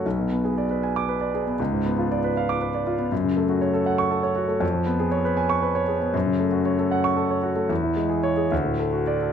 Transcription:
\new Staff \with { instrumentName = "Grand piano" } { \time 6/8 \key fis \minor \tempo 4. = 78 << { r4. r16 d'''8 r8. | r4. r16 d'''8 r8. | r4. r16 cis'''8 r8. | r4. r16 cis'''8 r8. |
r4. r16 cis'''8 r8. | r4 cis''8 r4 d''8 | } \\ { b,,16 b,16 b16 gis'16 d''16 b'16 gis''8 b'16 d''16 gis'16 b16 | cis,16 gis,16 b16 eis'16 d''16 b'16 eis''8 b'16 d''16 eis'16 b16 | fis,16 cis16 a16 fis'16 cis''16 a'16 fis''8 a'16 cis''16 fis'16 a16 | eis,16 eis16 b16 gis'16 cis''16 b'16 gis''8 b'16 cis''16 gis'16 b16 |
fis,16 cis16 a16 fis'16 cis''16 a'16 fis''8 a'16 cis''16 fis'16 a16 | e,16 e16 gis16 gis'8 gis'16 d,16 a,16 a16 fis'8 a'16 | } >> }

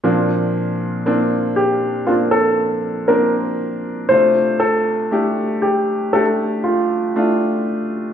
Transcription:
<<
  \new Staff \with { instrumentName = "Grand piano" } { \time 4/4 \key bes \major \tempo 4 = 59 r4. g'8 f'16 a'8. bes'4 | c''8 a'4 g'8 a'8 f'4 r8 | }
  \new Staff \with { instrumentName = "Upright piano" } { \time 4/4 \key bes \major <bes c' d'>4 <bes c' d'>4 <bes c' d'>4 <bes c' d'>4 | <a d' f'>4 <a d' g'>4 <a d' g'>4 <a d' f'>4 | }
  \new Staff \with { instrumentName = "Upright piano" } { \clef bass \time 4/4 \key bes \major <bes, f>4. r2 r8 | c4. r2 r8 | }
>>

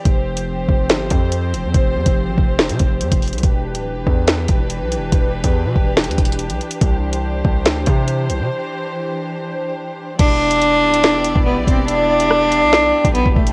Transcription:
<<
  \new Staff \with { instrumentName = "String section" } { \time 4/4 \key e \phrygian \tempo 4 = 142 << { <f c''>1~ | <f c''>1 | <e b'>1~ | <e b'>1 |
<e c''>1~ | <e c''>1 | <b d''>1~ | <b d''>1 | } \\ { <c' g'>1~ | <c' g'>1 | <d' g'>1~ | <d' g'>1~ |
<d' g'>1~ | <d' g'>1 | <e' g'>1~ | <e' g'>1 | } >> }
  \new Staff \with { instrumentName = "Cello" } { \time 4/4 \key e \phrygian r1 | r1 | r1 | r1 |
r1 | r1 | d'2. b8 c'8 | d'2. b8 a8 | }
  \new Staff \with { instrumentName = "808-style bass" } { \clef bass \time 4/4 \key e \phrygian f,,4. f,,8 g,,8 f,4 e,,16 f,16 | f,,8 f,16 f,,8 a,,16 f,,8. c16 f,,8 f,16 f,,8 c,16 | e,,8. d,,16. e,,16. e,4 e,,8. b,,16. e,,16. | e,,8. e,8 b,16 e,,8. e,16 e,,8. b,,16 r8 |
c,4. c,8 d,8 c4 b,,16 c16 | r1 | e,,4. d,,8~ d,,32 e,,8~ e,,32 e,,8 b,,16 e,,8~ | e,,4.~ e,,16 b,,8. r16 b,,8 e,,16 e,,8 | }
  \new DrumStaff \with { instrumentName = "Drums" } \drummode { \time 4/4 <hh bd>8. hh16 r8 bd8 <hh sn>8 <hh bd>8 hh8 hh8 | <hh bd>8. <hh bd>16 r8 bd8 <hh sn>16 hh16 <hh bd>8 hh16 <hh bd>16 <hh hho>32 hh32 hh32 hh32 | <hh bd>8. hh16 r8 bd8 <hh sn>8 <hh bd>8 hh8 hh8 | <hh bd>8. <hh bd>16 r8 bd8 \tuplet 3/2 { <hh sn>16 hh16 hh16 <hh bd>16 hh16 hh16 } hh16 hh16 hh16 hh16 |
<hh bd>8. hh16 r8 bd8 <hh sn>8 <hh bd>8 hh8 hh8 | r4 r4 r4 r4 | <cymc hh bd>8. hh16 hh8. hh16 <hh sn>8 hh16 bd16 r8 <hh bd>8 | hh8. hh16 ss8 hh8 sn8. <hh bd>16 hh16 bd16 bd16 hh16 | }
>>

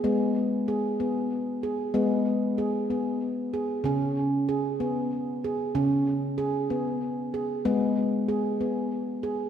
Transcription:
<<
  \new Staff \with { instrumentName = "Handpan" } { \time 3/4 \key gis \minor \tempo 4 = 95 b4 gis'8 b4 gis'8 | b4 gis'8 b4 gis'8 | cis'4 gis'8 b4 gis'8 | cis'4 gis'8 b4 gis'8 |
b4 gis'8 b4 gis'8 | }
  \new Staff \with { instrumentName = "Handpan" } { \clef bass \time 3/4 \key gis \minor gis8 r2 r8 | gis8 r2 r8 | cis8 r2 r8 | cis8 r2 r8 |
gis8 r2 r8 | }
>>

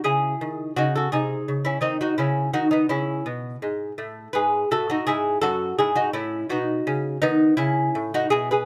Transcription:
<<
  \new Staff \with { instrumentName = "Lute" } { \time 6/8 \key cis \minor \tempo 4. = 56 <e' gis'>4 <dis' fis'>16 <fis' a'>16 <dis' gis'>8. <cis' e'>16 <bis dis'>16 <dis' fis'>16 | <cis' e'>8 <dis' fis'>16 <b dis'>16 <cis' e'>8 r4. | \key e \major <gis' b'>8 <fis' a'>16 <dis' fis'>16 <e' gis'>8 <fis' a'>8 <e' gis'>16 <dis' fis'>16 <cis' e'>8 | <dis' fis'>4 <b dis'>8 <cis' e'>8. <dis' fis'>16 <e' gis'>16 <gis' b'>16 | }
  \new Staff \with { instrumentName = "Lute" } { \clef bass \time 6/8 \key cis \minor cis8 dis8 cis8 bis,8 cis8 dis8 | cis8 dis8 cis8 b,8 gis,8 a,8 | \key e \major gis,8 a,8 gis,8 fis,8 gis,8 a,8 | b,8 cis8 dis8 cis8 a,8 b,8 | }
>>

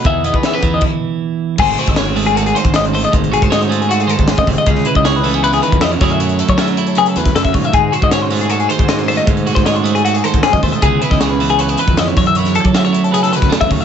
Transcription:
<<
  \new Staff \with { instrumentName = "Clean electric guitar" } { \time 4/4 \key gis \phrygian \tempo 4 = 156 e''8 dis''16 b'16 e''16 b'8 dis''16 r2 | gis'8 bis'16 dis''16 cis''16 bis'8 gis'16 a'16 gis'16 bis'8 dis''16 bis'16 bis'16 dis''16 | bis'8 gis'16 bis'16 dis''16 bis'8 gis'16 fis'16 gis'16 a'8 gis'16 dis''16 bis'16 dis''16 | gis'8 b'16 dis''16 cis''16 b'8 gis'16 b'16 gis'16 b'8 dis''16 cis''16 cis''16 e''16 |
cis''8 a'16 cis''16 e''16 cis''8 a'16 gis'16 a'16 b'8 a'16 e''16 cis''16 e''16 | gis'8 bis'16 dis''16 cis''16 bis'8 gis'16 a'16 gis'16 bis'8 dis''16 bis'16 bis'16 dis''16 | bis'8 gis'16 bis'16 dis''16 bis'8 gis'16 fis'16 gis'16 a'8 gis'16 dis''16 bis'16 dis''16 | gis'8 b'16 dis''16 cis''16 b'8 gis'16 b'16 gis'16 b'8 dis''16 cis''16 cis''16 e''16 |
cis''8 a'16 cis''16 e''16 cis''8 a'16 gis'16 a'16 b'8 a'16 e''16 cis''16 e''16 | }
  \new Staff \with { instrumentName = "Clean electric guitar" } { \time 4/4 \key gis \phrygian << { <e b dis' gis'>8 b8 cis'16 dis'8. r2 | <gis a fis' bis'>8 fis'8 cis''8 a8 fis'8 bis'4 a8~ | a8 fis'8 cis''8 a8 fis'8 bis'4. | r8 e'8 gis'8 a16 b16 e'4. <fis a e' gis'>8 |
e'8 a'8 a8 e'8 b'4. r8 | r8 fis'8 cis''8 a8 fis'8 bis'4 a8~ | a8 fis'8 cis''8 a8 fis'8 bis'4 a8 | <e b e' gis'>8 e'8 gis'8 b8 cis'16 e'16 b'4 r8 |
e'8 a'8 a8 e'8 b'4 a4 | } \\ { e,4. e2~ e8 | gis,4. gis4 dis4. | gis,4. gis4 dis8 a,8 bis,8 | cis4. e4 dis8 e8 fis,8~ |
fis,4 fis4 cis4. fis,8 | gis,4. gis4 dis4. | gis,4. gis4 dis4. | cis4. e4 gis,4 fis,8~ |
fis,4 fis4 cis4. fis,8 | } >> }
  \new Staff \with { instrumentName = "Fingered electric bass" } { \clef bass \time 4/4 \key gis \phrygian e,8. e8. e,8 r2 | gis,,8 r16 gis,,2 gis,,4~ gis,,16 | gis,,8. gis,2 gis,,8 fis,,16 gis,,16 r16 | cis,8 r16 cis,2 f,8. fis,8~ |
fis,8. fis4.~ fis16 e,8 fis,8 gis,8 | gis,8 r16 gis,2 gis,4~ gis,16 | gis,8. gis,2 gis,8 fis,16 dis,16 r16 | cis,8 r16 cis,2 f,8. fis,8~ |
fis,8. fis2 fis,8 e,16 dis,16 r16 | }
  \new DrumStaff \with { instrumentName = "Drums" } \drummode { \time 4/4 <hh bd>8 hh16 bd16 <hh sn>8 <hh bd>8 <cymc bd>4 r4 | <cymc bd>8 hh16 bd16 <hh sn>8 hho16 hh16 hh16 hh16 hh16 <hh bd>16 <hh sn>16 hh16 hho16 hh16 | <hh bd>16 hh16 hh16 <hh bd>16 <hh sn>16 hh16 hh16 hh16 hh16 hh16 hh16 <hh bd>16 <hh sn>16 <hh bd>16 <hho bd>16 hh16 | <hh bd>16 sn16 hh16 bd16 <hh sn>8 hho16 hh16 hh16 <hh sn>16 hh16 <hh bd>16 <hh sn>16 hh16 <hho bd sn>16 hh16 |
hh16 hh16 hh16 <hh bd>16 <hh sn>16 hh16 hh16 hh16 hh16 hh16 hh16 <hh bd sn>16 <hh sn>16 <hh bd>16 <hho bd>16 hh16 | <hh bd>8 hh16 bd16 <hh sn>8 hho16 hh16 hh16 hh16 hh16 <hh bd>16 <hh sn>16 <hh sn>16 hho16 hh16 | <hh bd>16 hh16 hh16 <hh bd sn>16 <hh sn>16 hh16 hh16 hh16 hh16 hh16 hh16 <hh bd>16 <hh sn>16 <hh bd>16 <hho bd>16 hh16 | <hh bd>8 hh16 <bd sn>16 <hh sn>8 hho16 hh16 hh16 hh16 hh16 <hh bd>16 <hh sn>16 <hh sn>16 <hho bd sn>16 hh16 |
hh16 <hh sn>16 hh16 <hh bd>16 <hh sn>16 hh16 hh16 hh16 hh16 <hh sn>16 hh16 <hh bd sn>16 <hh sn>16 <hh bd>16 <hho bd>16 hh16 | }
>>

